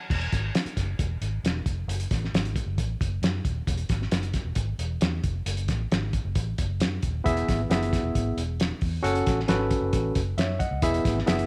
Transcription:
0.10 E1, kick, crash
0.21 closed hi-hat
0.32 G#1, kick, snare, closed hi-hat
0.55 snare, closed hi-hat
0.65 muted fingered electric bass stroke, closed hi-hat
0.76 F#1, kick, snare, closed hi-hat
0.99 E1, kick, closed hi-hat
1.21 G#1, closed hi-hat
1.44 E1, snare, closed hi-hat
1.66 F1, kick, closed hi-hat
1.88 F#1, closed hi-hat
2.00 closed hi-hat
2.11 A1, kick, snare, closed hi-hat
2.25 snare
2.33 G#1, snare, closed hi-hat
2.45 closed hi-hat
2.56 kick, closed hi-hat
2.66 F#1
2.78 A1, kick, closed hi-hat
3.01 F#1, kick, closed hi-hat
3.22 F#2, snare, closed hi-hat
3.45 D#1, kick, closed hi-hat
3.67 E1, kick, closed hi-hat
3.78 closed hi-hat
3.89 G#1, kick, snare, closed hi-hat
4.02 snare
4.12 F#1, snare, closed hi-hat
4.23 closed hi-hat
4.34 kick, snare, closed hi-hat
4.44 E1
4.55 G#1, kick, closed hi-hat
4.79 E1, closed hi-hat
5.01 E2, snare, closed hi-hat
5.23 F1, kick, closed hi-hat
5.46 F#1, closed hi-hat
5.57 closed hi-hat
5.68 A1, kick, snare, closed hi-hat
5.91 G#1, snare, closed hi-hat
6.13 kick, closed hi-hat
6.25 F#1
6.35 A1, kick, closed hi-hat
6.58 F#1, kick, closed hi-hat
6.80 F#2, snare, closed hi-hat
7.03 D#1, kick, closed hi-hat
7.24 E1 E3 B3 E4 G#4 E5, kick, closed hi-hat
7.37 closed hi-hat
7.48 G#1, kick, snare, closed hi-hat
7.70 F#1 B3 E4 G#4 E5, snare, closed hi-hat
7.83 closed hi-hat
7.93 kick, snare, closed hi-hat
8.03 E1
8.15 G#1, kick, closed hi-hat
8.37 E1, closed hi-hat
8.60 snare, closed hi-hat
8.81 E2, kick, open hi-hat
9.03 F#1 C#4 F#4 A4 F#5, closed hi-hat
9.15 closed hi-hat
9.26 A1, kick, snare, closed hi-hat
9.40 snare
9.48 G#1 C#4 F#4 A4 B4, snare, closed hi-hat
9.71 kick, closed hi-hat
9.81 F#1
9.93 A1, kick, closed hi-hat
10.15 F#1, kick, closed hi-hat
10.37 F#2 C#5 E5, snare, closed hi-hat
10.59 D#5 F#5, kick, closed hi-hat
10.71 C#2
10.82 E1 E3 B3 E4 G#4 E5, kick, closed hi-hat
10.94 closed hi-hat
11.05 G#1, kick, snare, closed hi-hat
11.19 snare
11.26 F#1 B3 E4 G#4 E5, snare, closed hi-hat
11.39 closed hi-hat

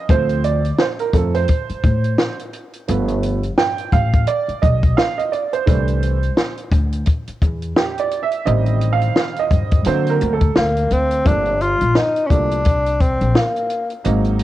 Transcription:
Already playing: D#5
0.09 D2 F3 A3 C4 C5, kick, closed hi-hat
0.29 closed hi-hat
0.44 D5, closed hi-hat
0.65 closed hi-hat
0.78 C5, snare
0.99 A#4, closed hi-hat
1.13 F2 F3 A3 C4 A4, kick, closed hi-hat
1.34 C5, closed hi-hat
1.48 kick, closed hi-hat
1.69 muted upright bass stroke, closed hi-hat
1.84 A2, kick, closed hi-hat
2.04 closed hi-hat
2.18 snare
2.39 closed hi-hat
2.53 closed hi-hat
2.73 closed hi-hat
2.88 G1 F3 A3 B3, closed hi-hat
3.08 closed hi-hat
3.23 closed hi-hat
3.43 closed hi-hat
3.58 G5, snare
3.78 closed hi-hat
3.93 A1 F5, kick, closed hi-hat
4.14 kick, closed hi-hat
4.27 D5, closed hi-hat
4.49 muted upright bass stroke, closed hi-hat
4.62 B1 D#5, kick, closed hi-hat
4.83 kick, closed hi-hat
4.97 F5, snare
5.18 D#5, closed hi-hat
5.32 D5, closed hi-hat
5.53 C5, closed hi-hat
5.66 C2 E3 A3 D4, kick, closed hi-hat
5.88 closed hi-hat
6.03 closed hi-hat
6.23 closed hi-hat
6.37 snare
6.58 closed hi-hat
6.72 D2, kick, closed hi-hat
6.92 closed hi-hat
7.06 kick, closed hi-hat
7.27 muted upright bass stroke, closed hi-hat
7.42 E2, kick, closed hi-hat
7.62 closed hi-hat
7.76 G4, snare
7.98 D5, closed hi-hat
8.11 closed hi-hat
8.23 E5
8.31 closed hi-hat
8.45 A1 D#3 G3 C4 D#5, closed hi-hat
8.66 closed hi-hat
8.81 closed hi-hat
8.92 F5
9.01 closed hi-hat
9.16 snare
9.36 D#5, closed hi-hat
9.51 G2, kick, closed hi-hat
9.71 kick, closed hi-hat
9.84 D3 F#3 A#3 C4 C5, closed hi-hat
10.06 A#4, closed hi-hat
10.21 D2, closed hi-hat
10.33 A4
10.41 kick, closed hi-hat
10.56 D2 A#3, snare
10.77 closed hi-hat
10.91 D2 C4, closed hi-hat
11.11 closed hi-hat
11.24 G1 F3 A3 A#3 C4 D4, kick, closed hi-hat
11.45 closed hi-hat
11.61 F4, closed hi-hat
11.81 A#1, closed hi-hat
11.95 D#4, snare
12.16 closed hi-hat
12.27 C2 F3 A3 A#3 C#4, kick
12.31 D4, closed hi-hat
12.51 closed hi-hat
12.65 kick, closed hi-hat
12.86 closed hi-hat
13.01 C4, kick, closed hi-hat
13.21 A#1, closed hi-hat
13.35 A#3, snare
13.56 closed hi-hat
13.70 closed hi-hat
13.90 closed hi-hat
14.04 G#1 F#3 A#3 C4 D#4, closed hi-hat
14.25 closed hi-hat
14.39 closed hi-hat

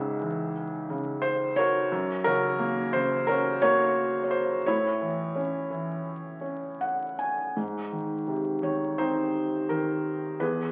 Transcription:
Already playing: C#2 G#2 C#3 G#4 C#5 E5
0.21 E3
0.90 C#3
1.22 C5
1.56 F#4 A#4 C#5
1.92 F#2
2.24 C#3 C#4 F#4 A#4
2.59 A#3
2.93 C#3 C5
3.27 C#4 F#4 A#4
3.62 A#3 F#4 A#4 C#5
4.23 C#5
4.31 C5
4.66 A2 E4 C#5
5.01 E3
5.36 C#4
5.70 E3
6.41 C#4
6.81 F#5
7.19 G#5
7.56 G#2
7.92 D#3
8.28 C3
8.62 D#3 C#5
8.98 C4 D#4 C5
9.69 D#3 A#4
10.40 E2 G#4 B4

